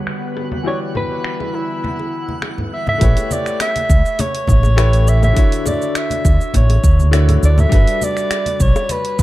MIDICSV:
0, 0, Header, 1, 7, 480
1, 0, Start_track
1, 0, Tempo, 588235
1, 539, Time_signature, 4, 2, 24, 8
1, 7529, End_track
2, 0, Start_track
2, 0, Title_t, "Synth texture"
2, 0, Program_c, 0, 99
2, 0, Note_on_c, 0, 78, 75
2, 2468, Note_off_c, 0, 78, 0
2, 7529, End_track
3, 0, Start_track
3, 0, Title_t, "Soprano saxophone"
3, 0, Program_c, 1, 64
3, 549, Note_on_c, 1, 73, 96
3, 655, Note_off_c, 1, 73, 0
3, 789, Note_on_c, 1, 71, 101
3, 1265, Note_on_c, 1, 64, 83
3, 1278, Note_off_c, 1, 71, 0
3, 2222, Note_off_c, 1, 64, 0
3, 2229, Note_on_c, 1, 76, 91
3, 2342, Note_off_c, 1, 76, 0
3, 2356, Note_on_c, 1, 76, 107
3, 2711, Note_on_c, 1, 74, 98
3, 2724, Note_off_c, 1, 76, 0
3, 2945, Note_off_c, 1, 74, 0
3, 2949, Note_on_c, 1, 76, 108
3, 3430, Note_on_c, 1, 73, 104
3, 3442, Note_off_c, 1, 76, 0
3, 4152, Note_on_c, 1, 76, 98
3, 4164, Note_off_c, 1, 73, 0
3, 4272, Note_off_c, 1, 76, 0
3, 4277, Note_on_c, 1, 76, 106
3, 4600, Note_off_c, 1, 76, 0
3, 4629, Note_on_c, 1, 74, 94
3, 4873, Note_on_c, 1, 76, 100
3, 4886, Note_off_c, 1, 74, 0
3, 5346, Note_off_c, 1, 76, 0
3, 5357, Note_on_c, 1, 73, 81
3, 5816, Note_off_c, 1, 73, 0
3, 6077, Note_on_c, 1, 74, 99
3, 6202, Note_on_c, 1, 76, 116
3, 6214, Note_off_c, 1, 74, 0
3, 6557, Note_on_c, 1, 74, 111
3, 6569, Note_off_c, 1, 76, 0
3, 7036, Note_on_c, 1, 73, 96
3, 7048, Note_off_c, 1, 74, 0
3, 7274, Note_on_c, 1, 71, 96
3, 7286, Note_off_c, 1, 73, 0
3, 7523, Note_off_c, 1, 71, 0
3, 7529, End_track
4, 0, Start_track
4, 0, Title_t, "Grand piano"
4, 0, Program_c, 2, 0
4, 0, Control_c, 2, 64, 127
4, 0, Note_on_c, 2, 55, 66
4, 0, Note_on_c, 2, 62, 60
4, 0, Note_on_c, 2, 66, 65
4, 0, Note_on_c, 2, 69, 65
4, 0, Note_on_c, 2, 71, 75
4, 501, Note_off_c, 2, 55, 0
4, 506, Note_off_c, 2, 62, 0
4, 512, Note_off_c, 2, 66, 0
4, 514, Note_on_c, 2, 52, 70
4, 517, Note_off_c, 2, 69, 0
4, 522, Note_off_c, 2, 71, 0
4, 525, Note_on_c, 2, 64, 63
4, 535, Note_on_c, 2, 66, 64
4, 546, Note_on_c, 2, 67, 63
4, 547, Control_c, 2, 64, 0
4, 556, Note_on_c, 2, 74, 77
4, 679, Control_c, 2, 64, 127
4, 2419, Note_off_c, 2, 52, 0
4, 2425, Note_off_c, 2, 64, 0
4, 2430, Note_off_c, 2, 66, 0
4, 2433, Note_on_c, 2, 57, 88
4, 2435, Note_off_c, 2, 67, 0
4, 2440, Note_off_c, 2, 74, 0
4, 2445, Note_on_c, 2, 64, 77
4, 2455, Note_on_c, 2, 67, 77
4, 2465, Note_on_c, 2, 71, 78
4, 2470, Control_c, 2, 64, 0
4, 2475, Note_on_c, 2, 73, 95
4, 2622, Control_c, 2, 64, 127
4, 3859, Note_off_c, 2, 57, 0
4, 3865, Note_off_c, 2, 64, 0
4, 3870, Note_off_c, 2, 67, 0
4, 3875, Note_off_c, 2, 71, 0
4, 3880, Note_off_c, 2, 73, 0
4, 3884, Note_on_c, 2, 57, 94
4, 3890, Note_on_c, 2, 64, 86
4, 3894, Note_on_c, 2, 67, 85
4, 3900, Note_on_c, 2, 71, 83
4, 3905, Note_on_c, 2, 73, 107
4, 4344, Note_off_c, 2, 57, 0
4, 4347, Note_off_c, 2, 64, 0
4, 4349, Note_off_c, 2, 67, 0
4, 4352, Note_on_c, 2, 50, 85
4, 4353, Note_off_c, 2, 71, 0
4, 4355, Note_off_c, 2, 73, 0
4, 4363, Note_on_c, 2, 62, 82
4, 4372, Note_on_c, 2, 64, 83
4, 4384, Note_on_c, 2, 66, 77
4, 4390, Control_c, 2, 64, 0
4, 4394, Note_on_c, 2, 73, 95
4, 4514, Control_c, 2, 64, 127
4, 5779, Note_off_c, 2, 50, 0
4, 5784, Note_off_c, 2, 62, 0
4, 5789, Note_off_c, 2, 64, 0
4, 5794, Note_off_c, 2, 66, 0
4, 5799, Note_off_c, 2, 73, 0
4, 5803, Note_on_c, 2, 50, 96
4, 5809, Note_on_c, 2, 62, 86
4, 5814, Note_on_c, 2, 64, 86
4, 5820, Note_on_c, 2, 66, 82
4, 5825, Note_on_c, 2, 73, 99
4, 6264, Note_off_c, 2, 50, 0
4, 6267, Note_off_c, 2, 62, 0
4, 6269, Note_off_c, 2, 64, 0
4, 6272, Note_off_c, 2, 66, 0
4, 6275, Note_off_c, 2, 73, 0
4, 6276, Note_on_c, 2, 55, 89
4, 6285, Note_on_c, 2, 62, 79
4, 6297, Note_on_c, 2, 66, 76
4, 6307, Note_on_c, 2, 69, 81
4, 6309, Control_c, 2, 64, 0
4, 6317, Note_on_c, 2, 71, 94
4, 6470, Control_c, 2, 64, 127
4, 7529, Note_off_c, 2, 55, 0
4, 7529, Note_off_c, 2, 62, 0
4, 7529, Note_off_c, 2, 66, 0
4, 7529, Note_off_c, 2, 69, 0
4, 7529, Note_off_c, 2, 71, 0
4, 7529, End_track
5, 0, Start_track
5, 0, Title_t, "Analog synth pad"
5, 0, Program_c, 3, 89
5, 0, Note_on_c, 3, 50, 77
5, 0, Note_on_c, 3, 55, 73
5, 0, Note_on_c, 3, 59, 69
5, 0, Note_on_c, 3, 66, 70
5, 0, Note_on_c, 3, 71, 89
5, 519, Note_off_c, 3, 66, 0
5, 535, Note_on_c, 3, 64, 75
5, 2425, Note_off_c, 3, 55, 0
5, 2425, Note_off_c, 3, 59, 0
5, 2425, Note_off_c, 3, 71, 0
5, 2427, Note_off_c, 3, 50, 0
5, 2438, Note_off_c, 3, 64, 0
5, 7529, End_track
6, 0, Start_track
6, 0, Title_t, "Fretless electric bass"
6, 0, Program_c, 4, 35
6, 2459, Note_on_c, 4, 33, 92
6, 2550, Note_off_c, 4, 33, 0
6, 3179, Note_on_c, 4, 37, 105
6, 3270, Note_off_c, 4, 37, 0
6, 3660, Note_on_c, 4, 33, 84
6, 4329, Note_off_c, 4, 33, 0
6, 5100, Note_on_c, 4, 38, 107
6, 5191, Note_off_c, 4, 38, 0
6, 5341, Note_on_c, 4, 33, 103
6, 5516, Note_off_c, 4, 33, 0
6, 5579, Note_on_c, 4, 38, 77
6, 6008, Note_off_c, 4, 38, 0
6, 6058, Note_on_c, 4, 38, 101
6, 6235, Note_off_c, 4, 38, 0
6, 6299, Note_on_c, 4, 31, 89
6, 6390, Note_off_c, 4, 31, 0
6, 7019, Note_on_c, 4, 35, 104
6, 7110, Note_off_c, 4, 35, 0
6, 7500, Note_on_c, 4, 31, 85
6, 7529, Note_off_c, 4, 31, 0
6, 7529, End_track
7, 0, Start_track
7, 0, Title_t, "Drums"
7, 56, Note_on_c, 9, 26, 85
7, 138, Note_off_c, 9, 26, 0
7, 299, Note_on_c, 9, 60, 67
7, 381, Note_off_c, 9, 60, 0
7, 421, Note_on_c, 9, 63, 90
7, 502, Note_off_c, 9, 63, 0
7, 774, Note_on_c, 9, 60, 47
7, 776, Note_on_c, 9, 63, 83
7, 781, Note_on_c, 9, 64, 70
7, 856, Note_off_c, 9, 60, 0
7, 858, Note_off_c, 9, 63, 0
7, 862, Note_off_c, 9, 64, 0
7, 1015, Note_on_c, 9, 26, 89
7, 1097, Note_off_c, 9, 26, 0
7, 1144, Note_on_c, 9, 60, 58
7, 1147, Note_on_c, 9, 63, 48
7, 1226, Note_off_c, 9, 60, 0
7, 1228, Note_off_c, 9, 63, 0
7, 1504, Note_on_c, 9, 63, 85
7, 1585, Note_off_c, 9, 63, 0
7, 1627, Note_on_c, 9, 60, 36
7, 1708, Note_off_c, 9, 60, 0
7, 1865, Note_on_c, 9, 63, 65
7, 1947, Note_off_c, 9, 63, 0
7, 1976, Note_on_c, 9, 26, 87
7, 1978, Note_on_c, 9, 60, 60
7, 2058, Note_off_c, 9, 26, 0
7, 2059, Note_off_c, 9, 60, 0
7, 2107, Note_on_c, 9, 64, 68
7, 2189, Note_off_c, 9, 64, 0
7, 2340, Note_on_c, 9, 63, 74
7, 2343, Note_on_c, 9, 64, 74
7, 2422, Note_off_c, 9, 63, 0
7, 2425, Note_off_c, 9, 64, 0
7, 2457, Note_on_c, 9, 46, 67
7, 2459, Note_on_c, 9, 36, 123
7, 2461, Note_on_c, 9, 69, 42
7, 2539, Note_off_c, 9, 46, 0
7, 2541, Note_off_c, 9, 36, 0
7, 2542, Note_off_c, 9, 69, 0
7, 2585, Note_on_c, 9, 46, 45
7, 2588, Note_on_c, 9, 69, 31
7, 2589, Note_on_c, 9, 60, 59
7, 2666, Note_off_c, 9, 46, 0
7, 2670, Note_off_c, 9, 69, 0
7, 2671, Note_off_c, 9, 60, 0
7, 2699, Note_on_c, 9, 63, 89
7, 2701, Note_on_c, 9, 69, 78
7, 2781, Note_off_c, 9, 63, 0
7, 2783, Note_off_c, 9, 69, 0
7, 2825, Note_on_c, 9, 26, 34
7, 2829, Note_on_c, 9, 69, 33
7, 2907, Note_off_c, 9, 26, 0
7, 2910, Note_off_c, 9, 69, 0
7, 2938, Note_on_c, 9, 26, 102
7, 2938, Note_on_c, 9, 46, 73
7, 2942, Note_on_c, 9, 69, 41
7, 2944, Note_on_c, 9, 60, 78
7, 3020, Note_off_c, 9, 26, 0
7, 3020, Note_off_c, 9, 46, 0
7, 3023, Note_off_c, 9, 69, 0
7, 3026, Note_off_c, 9, 60, 0
7, 3066, Note_on_c, 9, 46, 48
7, 3068, Note_on_c, 9, 63, 64
7, 3070, Note_on_c, 9, 69, 32
7, 3147, Note_off_c, 9, 46, 0
7, 3150, Note_off_c, 9, 63, 0
7, 3151, Note_off_c, 9, 69, 0
7, 3179, Note_on_c, 9, 36, 97
7, 3182, Note_on_c, 9, 69, 80
7, 3261, Note_off_c, 9, 36, 0
7, 3263, Note_off_c, 9, 69, 0
7, 3310, Note_on_c, 9, 69, 35
7, 3391, Note_off_c, 9, 69, 0
7, 3418, Note_on_c, 9, 46, 77
7, 3418, Note_on_c, 9, 60, 56
7, 3422, Note_on_c, 9, 69, 48
7, 3423, Note_on_c, 9, 63, 97
7, 3499, Note_off_c, 9, 60, 0
7, 3500, Note_off_c, 9, 46, 0
7, 3503, Note_off_c, 9, 69, 0
7, 3505, Note_off_c, 9, 63, 0
7, 3546, Note_on_c, 9, 46, 49
7, 3628, Note_off_c, 9, 46, 0
7, 3651, Note_on_c, 9, 64, 90
7, 3660, Note_on_c, 9, 36, 98
7, 3664, Note_on_c, 9, 69, 78
7, 3733, Note_off_c, 9, 64, 0
7, 3741, Note_off_c, 9, 36, 0
7, 3745, Note_off_c, 9, 69, 0
7, 3779, Note_on_c, 9, 60, 74
7, 3787, Note_on_c, 9, 63, 66
7, 3789, Note_on_c, 9, 69, 35
7, 3861, Note_off_c, 9, 60, 0
7, 3868, Note_off_c, 9, 63, 0
7, 3871, Note_off_c, 9, 69, 0
7, 3899, Note_on_c, 9, 26, 101
7, 3899, Note_on_c, 9, 46, 70
7, 3903, Note_on_c, 9, 69, 45
7, 3981, Note_off_c, 9, 26, 0
7, 3981, Note_off_c, 9, 46, 0
7, 3985, Note_off_c, 9, 69, 0
7, 4025, Note_on_c, 9, 46, 48
7, 4029, Note_on_c, 9, 69, 30
7, 4107, Note_off_c, 9, 46, 0
7, 4111, Note_off_c, 9, 69, 0
7, 4141, Note_on_c, 9, 69, 73
7, 4223, Note_off_c, 9, 69, 0
7, 4265, Note_on_c, 9, 60, 52
7, 4267, Note_on_c, 9, 63, 97
7, 4268, Note_on_c, 9, 69, 32
7, 4347, Note_off_c, 9, 60, 0
7, 4348, Note_off_c, 9, 63, 0
7, 4350, Note_off_c, 9, 69, 0
7, 4378, Note_on_c, 9, 46, 67
7, 4379, Note_on_c, 9, 36, 120
7, 4381, Note_on_c, 9, 69, 45
7, 4459, Note_off_c, 9, 46, 0
7, 4461, Note_off_c, 9, 36, 0
7, 4463, Note_off_c, 9, 69, 0
7, 4506, Note_on_c, 9, 46, 45
7, 4510, Note_on_c, 9, 69, 31
7, 4588, Note_off_c, 9, 46, 0
7, 4592, Note_off_c, 9, 69, 0
7, 4615, Note_on_c, 9, 60, 76
7, 4620, Note_on_c, 9, 64, 72
7, 4622, Note_on_c, 9, 69, 80
7, 4623, Note_on_c, 9, 63, 83
7, 4697, Note_off_c, 9, 60, 0
7, 4702, Note_off_c, 9, 64, 0
7, 4703, Note_off_c, 9, 69, 0
7, 4705, Note_off_c, 9, 63, 0
7, 4748, Note_on_c, 9, 69, 36
7, 4829, Note_off_c, 9, 69, 0
7, 4858, Note_on_c, 9, 26, 100
7, 4858, Note_on_c, 9, 46, 67
7, 4861, Note_on_c, 9, 69, 47
7, 4939, Note_off_c, 9, 26, 0
7, 4939, Note_off_c, 9, 46, 0
7, 4943, Note_off_c, 9, 69, 0
7, 4981, Note_on_c, 9, 63, 70
7, 4986, Note_on_c, 9, 46, 44
7, 4989, Note_on_c, 9, 69, 33
7, 5062, Note_off_c, 9, 63, 0
7, 5067, Note_off_c, 9, 46, 0
7, 5071, Note_off_c, 9, 69, 0
7, 5099, Note_on_c, 9, 36, 106
7, 5100, Note_on_c, 9, 60, 56
7, 5101, Note_on_c, 9, 69, 84
7, 5181, Note_off_c, 9, 36, 0
7, 5182, Note_off_c, 9, 60, 0
7, 5183, Note_off_c, 9, 69, 0
7, 5229, Note_on_c, 9, 69, 34
7, 5311, Note_off_c, 9, 69, 0
7, 5335, Note_on_c, 9, 63, 102
7, 5339, Note_on_c, 9, 46, 70
7, 5342, Note_on_c, 9, 69, 50
7, 5417, Note_off_c, 9, 63, 0
7, 5420, Note_off_c, 9, 46, 0
7, 5424, Note_off_c, 9, 69, 0
7, 5465, Note_on_c, 9, 46, 46
7, 5467, Note_on_c, 9, 60, 69
7, 5547, Note_off_c, 9, 46, 0
7, 5549, Note_off_c, 9, 60, 0
7, 5579, Note_on_c, 9, 36, 106
7, 5581, Note_on_c, 9, 69, 83
7, 5660, Note_off_c, 9, 36, 0
7, 5663, Note_off_c, 9, 69, 0
7, 5709, Note_on_c, 9, 63, 67
7, 5709, Note_on_c, 9, 69, 34
7, 5790, Note_off_c, 9, 63, 0
7, 5791, Note_off_c, 9, 69, 0
7, 5819, Note_on_c, 9, 26, 104
7, 5819, Note_on_c, 9, 46, 65
7, 5822, Note_on_c, 9, 69, 47
7, 5900, Note_off_c, 9, 26, 0
7, 5900, Note_off_c, 9, 46, 0
7, 5904, Note_off_c, 9, 69, 0
7, 5944, Note_on_c, 9, 64, 91
7, 5946, Note_on_c, 9, 46, 47
7, 5949, Note_on_c, 9, 60, 59
7, 5950, Note_on_c, 9, 69, 35
7, 6026, Note_off_c, 9, 64, 0
7, 6028, Note_off_c, 9, 46, 0
7, 6031, Note_off_c, 9, 60, 0
7, 6032, Note_off_c, 9, 69, 0
7, 6063, Note_on_c, 9, 69, 80
7, 6145, Note_off_c, 9, 69, 0
7, 6183, Note_on_c, 9, 64, 93
7, 6186, Note_on_c, 9, 63, 94
7, 6190, Note_on_c, 9, 69, 33
7, 6264, Note_off_c, 9, 64, 0
7, 6267, Note_off_c, 9, 63, 0
7, 6271, Note_off_c, 9, 69, 0
7, 6298, Note_on_c, 9, 60, 82
7, 6299, Note_on_c, 9, 36, 125
7, 6299, Note_on_c, 9, 46, 68
7, 6303, Note_on_c, 9, 69, 47
7, 6380, Note_off_c, 9, 60, 0
7, 6381, Note_off_c, 9, 36, 0
7, 6381, Note_off_c, 9, 46, 0
7, 6384, Note_off_c, 9, 69, 0
7, 6426, Note_on_c, 9, 46, 44
7, 6429, Note_on_c, 9, 69, 33
7, 6507, Note_off_c, 9, 46, 0
7, 6511, Note_off_c, 9, 69, 0
7, 6540, Note_on_c, 9, 63, 84
7, 6542, Note_on_c, 9, 69, 81
7, 6621, Note_off_c, 9, 63, 0
7, 6624, Note_off_c, 9, 69, 0
7, 6664, Note_on_c, 9, 26, 33
7, 6668, Note_on_c, 9, 69, 38
7, 6746, Note_off_c, 9, 26, 0
7, 6749, Note_off_c, 9, 69, 0
7, 6778, Note_on_c, 9, 26, 106
7, 6778, Note_on_c, 9, 46, 67
7, 6780, Note_on_c, 9, 60, 47
7, 6782, Note_on_c, 9, 69, 44
7, 6860, Note_off_c, 9, 26, 0
7, 6860, Note_off_c, 9, 46, 0
7, 6861, Note_off_c, 9, 60, 0
7, 6863, Note_off_c, 9, 69, 0
7, 6902, Note_on_c, 9, 63, 66
7, 6905, Note_on_c, 9, 46, 44
7, 6909, Note_on_c, 9, 69, 34
7, 6984, Note_off_c, 9, 63, 0
7, 6987, Note_off_c, 9, 46, 0
7, 6990, Note_off_c, 9, 69, 0
7, 7019, Note_on_c, 9, 36, 113
7, 7019, Note_on_c, 9, 69, 81
7, 7101, Note_off_c, 9, 36, 0
7, 7101, Note_off_c, 9, 69, 0
7, 7146, Note_on_c, 9, 69, 33
7, 7147, Note_on_c, 9, 60, 82
7, 7228, Note_off_c, 9, 69, 0
7, 7229, Note_off_c, 9, 60, 0
7, 7255, Note_on_c, 9, 63, 83
7, 7256, Note_on_c, 9, 46, 69
7, 7260, Note_on_c, 9, 69, 46
7, 7337, Note_off_c, 9, 63, 0
7, 7338, Note_off_c, 9, 46, 0
7, 7341, Note_off_c, 9, 69, 0
7, 7382, Note_on_c, 9, 46, 45
7, 7464, Note_off_c, 9, 46, 0
7, 7499, Note_on_c, 9, 36, 107
7, 7499, Note_on_c, 9, 64, 87
7, 7499, Note_on_c, 9, 69, 84
7, 7529, Note_off_c, 9, 36, 0
7, 7529, Note_off_c, 9, 64, 0
7, 7529, Note_off_c, 9, 69, 0
7, 7529, End_track
0, 0, End_of_file